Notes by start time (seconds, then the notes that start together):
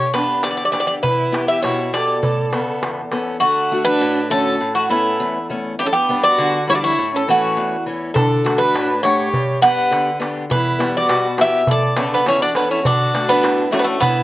Already playing: G2 G4 C#5
0.14 B3 D4 G4 B4, darbuka tek
0.43 D3 G4 D5, darbuka tek
0.51 D5
0.57 D5
0.65 D5
0.72 B3 D4 G4 D5, darbuka tek
0.80 D5
0.87 D5, darbuka tek
1.03 E2 E4 B4, darbuka dum
1.32 B3 E4 G4, darbuka tek
1.48 G4 E5
1.63 B2 E4 C#5, darbuka tek
1.93 B3 E4 G4 A4 D5, darbuka tek
2.08 darbuka tek
2.23 A2, darbuka dum
2.53 C#3 B3 A4, darbuka tek
2.83 E2, darbuka tek
2.98 darbuka tek
3.12 B3 C#4 A4, darbuka tek
3.40 D3 A3 F#4
3.72 A3 D4 F#4
3.85 D4 B4
4.01 A2
4.30 D3 A3 C#4 F#4 A4
4.61 A2
4.75 A3 F#4
4.89 A3 B3 C#4 E4
5.20 E2
5.50 A3 B3 C#4
5.79 G2 B3 G4
5.85 C#4 A4
5.93 B3 G4
6.09 G3 B3 D4
6.24 F#4 D5
6.38 D3
6.68 G3 B3 D4 E4 C#5
6.75 F#4 D5
6.82 E4 C#5
6.98 A2
7.14 C#4 A4
7.28 E3 A3 C#4 F#4
7.57 E2
7.86 E3 A3 C#4
8.14 D3 D4 A4, darbuka dum
8.45 A3 D4 F#4, darbuka tek
8.58 D4 B4
8.74 A2, darbuka tek
9.03 A3 D4 G4 C#5 F#5, darbuka tek
9.19 darbuka tek
9.34 G2, darbuka dum
9.62 B3 D4 G4 B4 F#5, darbuka tek
9.91 D3, darbuka tek
10.20 B3 D4 G4, darbuka tek
10.37 darbuka tek
10.50 E2 E4 B4, darbuka dum
10.79 G3 B3 E4, darbuka tek
10.97 F#4 D5
11.09 B2, darbuka tek
11.38 B3 E4 G4 E5, darbuka tek
11.53 darbuka tek
11.67 A2 A4 D5, darbuka dum
11.83 darbuka tek
11.96 C#3 A3 B3 C#4 A4, darbuka tek
12.10 B3 D4, darbuka tek
12.26 E2 C#4 E4, darbuka tek
12.42 D4 F#4
12.55 B3 C#4 D4 A4, darbuka tek
12.70 C#4 E4
12.85 D3 D4 F#4, darbuka dum
13.14 A3 D4 F#4, darbuka tek
13.29 B3 D4, darbuka tek
13.43 A2, darbuka tek
13.58 darbuka tek
13.71 A3 C#4 D4 F#4, darbuka tek
13.79 B3 D4
13.84 A3 C#4
14.00 A2 B3, darbuka dum
14.05 E4